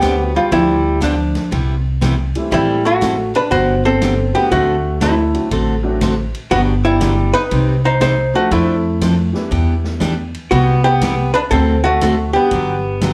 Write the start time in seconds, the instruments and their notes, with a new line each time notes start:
Already playing: upright bass D2, hollow-body jazz guitar B3 G4
0.01 steel-string acoustic guitar D3 G3 C4 D4 G4, upright piano G3 A3 C4 D4 G4, kick, snare, hi-hat pedal, ride
0.24 hollow-body jazz guitar F#4
0.36 hollow-body jazz guitar G3 F4
0.52 upright bass D2, steel-string acoustic guitar D3 F3 B3 D4 G4, hollow-body jazz guitar G3 E4, kick, ride
1.01 steel-string acoustic guitar D3 F3 B3 D4 G4, hollow-body jazz guitar F3 D4, kick, snare, hi-hat pedal, ride
1.35 snare, ride
1.51 upright bass C2, steel-string acoustic guitar C3 G3 B3 E4 G4, kick, ride
2.01 steel-string acoustic guitar C3 G3 B3 E4 G4, kick, snare, hi-hat pedal, ride
2.35 upright piano E3 G3 A3 C4 E4, ride
2.51 upright bass A1, steel-string acoustic guitar E3 G3 C4 E4 A4, hollow-body jazz guitar G3 E4, kick, ride
2.85 hollow-body jazz guitar A3 F#4
3.01 steel-string acoustic guitar E3 G3 C4 E4 A4, kick, snare, hi-hat pedal, ride
3.35 hollow-body jazz guitar D4 B4, ride
3.51 upright bass G1, steel-string acoustic guitar D3 F#3 B3 D4 G4, hollow-body jazz guitar F#4 C5, kick, ride
3.85 hollow-body jazz guitar C4 A4
4.01 steel-string acoustic guitar D3 F#3 B3 D4 G4, kick, snare, hi-hat pedal, ride
4.34 upright piano F#3 A3 C4 D4 F#4, hollow-body jazz guitar B3 G4, ride
4.51 upright bass D2, steel-string acoustic guitar D3 A3 C4 F#4 A4, hollow-body jazz guitar A3 F#4, kick, ride
5.01 steel-string acoustic guitar D3 A3 C4 F#4 A4, hollow-body jazz guitar A3 E4, kick, snare, hi-hat pedal, ride
5.33 upright piano F#3 A3 C4 D4 F#4, ride
5.51 upright bass A1, steel-string acoustic guitar D3 A3 C4 F#4 A4, kick, ride
5.83 upright piano F#3 A3 C4 D4 F#4
6.01 steel-string acoustic guitar D3 A3 C4 F#4 A4, kick, snare, hi-hat pedal, ride
6.34 ride
6.51 upright bass G1, steel-string acoustic guitar D3 F#3 B3 D4 G4, hollow-body jazz guitar B3 F#4, kick, ride
6.85 hollow-body jazz guitar G3 E4
7.01 steel-string acoustic guitar D3 F#3 B3 D4 G4, kick, snare, hi-hat pedal, ride
7.34 hollow-body jazz guitar D#4 B4, ride
7.51 upright bass C2, steel-string acoustic guitar C3 G3 C4 D#4 G4, kick, ride
7.85 hollow-body jazz guitar D#4 C5
8.01 steel-string acoustic guitar C3 G3 C4 D#4 G4, hollow-body jazz guitar D#4 C5, kick, snare, hi-hat pedal, ride
8.34 upright piano F3 A3 C4 D4 F4, hollow-body jazz guitar A3 F#4
8.51 upright bass F2, steel-string acoustic guitar F3 C4 D4 A4, hollow-body jazz guitar A3 E4, kick, ride
9.01 steel-string acoustic guitar F3 C4 D4 A4, kick, snare, hi-hat pedal, ride
9.33 upright piano E3 G3 B3 D4 E4, snare
9.51 upright bass E2, steel-string acoustic guitar E3 B3 D4 G4, kick, ride
9.84 snare
10.00 steel-string acoustic guitar E3 B3 D4 G4, kick, snare, hi-hat pedal, ride
10.34 ride
10.51 upright bass C2, steel-string acoustic guitar C3 G3 B3 E4 G4, hollow-body jazz guitar B3 F#4, kick, ride
10.84 hollow-body jazz guitar B3 G4
11.01 steel-string acoustic guitar C3 G3 B3 E4 G4, kick, snare, hi-hat pedal, ride
11.34 hollow-body jazz guitar D4 B4, ride
11.51 upright bass D2, steel-string acoustic guitar D3 A3 C4 F#4 A4, hollow-body jazz guitar C4 A4, kick, ride
11.84 hollow-body jazz guitar A3 F#4
12.01 steel-string acoustic guitar D3 A3 C4 F#4 A4, kick, snare, hi-hat pedal, ride
12.33 upright piano G3 B3 D4 F#4 G4, hollow-body jazz guitar B3 G4
12.51 upright bass G1, steel-string acoustic guitar D3 F#3 B3 D4 G4, kick, ride
13.01 steel-string acoustic guitar D3 F#3 B3 D4 G4, kick, snare, hi-hat pedal, ride